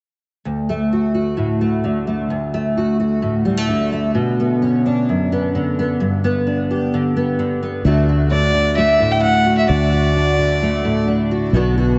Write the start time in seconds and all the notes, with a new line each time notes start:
0.45 D2
0.69 A3
0.93 F#4
1.14 F#4
1.37 A2
1.61 A3
1.84 D3
2.07 A3
2.30 D2
2.54 A3
2.77 F#4
3.00 F#4
3.22 A2
3.45 G3
3.57 A3
3.68 D3
3.92 A3
4.15 B2
4.40 B3
4.62 C#4
4.86 D4
5.09 F#2
5.32 B3
5.55 D3
5.79 B3
6.00 G2
6.24 B3
6.47 D4
6.71 G4
6.94 D3
7.16 B3
7.39 D3
7.63 B3
7.85 D2 D3 A3 D4 F#4
8.09 F#4
8.31 D4 D5
8.54 D3
8.78 A3 E5
9.00 A2
9.12 G5
9.23 D4 F#5
9.46 F#4
9.58 E5
9.69 D2 D4 D5
9.93 F#4
10.16 D4
10.39 D3
10.62 A3
10.85 A2
11.07 D4
11.31 F#4
11.53 B1 B2 D3 B3 D4 F#4
11.78 F#4